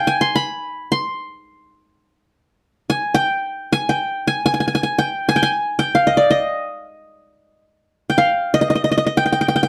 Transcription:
0.00 0.48 F5 medium
0.00 0.13 G5 medium
0.07 0.87 G#5 medium
0.21 0.41 C6 medium
0.35 0.98 B5 medium
0.92 1.78 C6 medium
2.90 3.20 G#5 medium
3.14 3.79 G5 medium
3.73 3.95 G#5 medium
3.89 4.33 G5 medium
4.27 4.45 G#5 medium
4.46 4.53 G#5 medium
4.54 4.60 G#5 medium
4.60 4.67 G#5 medium
4.68 4.74 G#5 medium
4.75 4.83 G#5 medium
4.83 5.05 G#5 medium
4.99 5.35 G5 medium
5.29 5.42 G#5 medium
5.36 5.49 G5 medium
5.43 5.85 G#5 medium
5.79 6.62 G5 medium
5.95 6.84 F5 medium
6.07 6.23 D#5 medium
6.17 6.37 D5 medium
6.31 7.60 D#5 medium
8.10 8.92 G5 medium
8.18 9.07 F5 medium
8.54 8.61 D#5 medium
8.61 8.70 D#5 medium
8.70 8.75 D#5 medium
8.75 8.84 D#5 medium
8.84 8.91 D#5 medium
8.92 8.97 D#5 medium
8.98 9.06 D#5 medium
9.06 9.68 D#5 medium
9.17 9.25 G5 medium
9.26 9.32 G5 medium
9.32 9.41 G5 medium
9.41 9.48 G5 medium
9.48 9.55 G5 medium
9.56 9.63 G5 medium
9.63 9.68 G5 medium

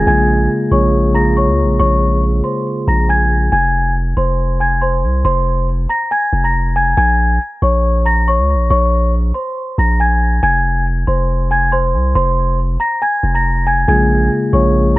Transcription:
0.06 0.48 A#1 loud
0.06 0.68 C#3 loud
0.06 0.68 G#3 medium
0.06 0.68 A#3 medium
0.06 0.69 F4 medium
0.06 0.69 G#4 loud
0.06 0.48 G#5 loud
0.06 0.48 G#6 medium
0.71 1.49 A#1 loud
0.71 1.12 C#3 medium
0.71 1.12 G#3 medium
0.71 1.13 A#3 medium
0.71 1.13 F4 medium
0.71 1.13 G#4 medium
0.71 1.13 C#5 medium
0.71 1.12 C#6 medium
1.14 1.76 C#3 medium
1.14 1.76 G#3 medium
1.14 1.76 A#3 medium
1.14 1.76 F4 medium
1.14 1.77 G#4 medium
1.14 1.35 A#5 medium
1.14 1.36 A#6 medium
1.37 1.78 C#5 medium
1.37 1.77 C#6 medium
1.48 1.65 C#2 loud
1.64 1.79 A#1 loud
1.80 2.42 A#1 loud
1.80 2.21 C#5 medium
1.80 2.20 C#6 loud
2.44 2.85 C5 medium
2.44 2.85 C6 medium
2.88 3.50 A#1 loud
2.88 3.08 A#5 medium
2.88 3.08 A#6 medium
3.09 3.50 G#5 medium
3.09 3.50 G#6 medium
3.52 4.14 F1 loud
3.52 3.93 G#5 loud
3.52 3.93 G#6 medium
4.17 5.05 F1 loud
4.17 4.58 C5 medium
4.17 4.57 C6 medium
4.60 4.81 G#5 medium
4.60 4.81 G#6 medium
4.82 5.23 C5 medium
4.82 5.22 C6 medium
5.03 5.24 C2 loud
5.25 5.87 F1 loud
5.25 5.66 C5 medium
5.25 5.65 C6 loud
5.89 6.10 A#5 medium
5.89 6.10 A#6 medium
6.11 6.42 G#5 medium
6.11 6.43 G#6 medium
6.33 6.95 F1 loud
6.44 6.74 A#5 medium
6.44 6.74 A#6 medium
6.76 6.96 G#5 medium
6.76 6.97 G#6 medium
6.97 7.39 A#1 loud
6.97 7.38 G#5 loud
6.97 7.39 G#6 medium
7.62 8.40 A#1 loud
7.62 8.03 C#5 medium
7.62 8.03 C#6 medium
8.05 8.26 A#5 medium
8.05 8.26 A#6 medium
8.28 8.68 C#5 medium
8.28 8.68 C#6 medium
8.38 8.56 C#2 loud
8.54 8.69 A#1 loud
8.70 9.32 A#1 loud
8.70 9.11 C#5 medium
8.70 9.11 C#6 loud
9.34 9.76 C5 medium
9.34 9.75 C6 medium
9.78 10.40 A#1 loud
9.78 9.99 A#5 medium
9.78 9.99 A#6 medium
10.00 10.40 G#5 medium
10.00 10.41 G#6 medium
10.43 11.05 F1 loud
10.43 10.83 G#5 loud
10.43 10.84 G#6 medium
11.07 11.96 F1 loud
11.07 11.48 C5 medium
11.07 11.48 C6 medium
11.51 11.71 G#5 medium
11.51 11.72 G#6 medium
11.72 12.13 C5 medium
11.72 12.13 C6 medium
11.94 12.14 C2 loud
12.15 12.78 F1 loud
12.15 12.56 C5 medium
12.15 12.56 C6 loud
12.80 13.01 A#5 medium
12.80 13.01 A#6 medium
13.02 13.33 G#5 medium
13.02 13.33 G#6 medium
13.23 13.86 F1 loud
13.35 13.65 A#5 medium
13.35 13.65 A#6 medium
13.67 13.87 G#5 medium
13.67 13.87 G#6 medium
13.87 14.30 A#1 loud
13.87 14.49 C#3 medium
13.87 14.49 G#3 medium
13.87 14.50 A#3 medium
13.87 14.50 F4 medium
13.87 14.50 G#4 loud
13.87 14.29 G#5 loud
13.87 14.29 G#6 medium
14.52 14.99 A#1 loud
14.52 14.93 C#3 medium
14.52 14.94 G#3 medium
14.52 14.94 A#3 medium
14.52 14.94 F4 medium
14.52 14.94 G#4 medium
14.52 14.94 C#5 medium
14.52 14.94 C#6 medium
14.95 14.99 C#3 medium
14.95 14.99 G#3 medium

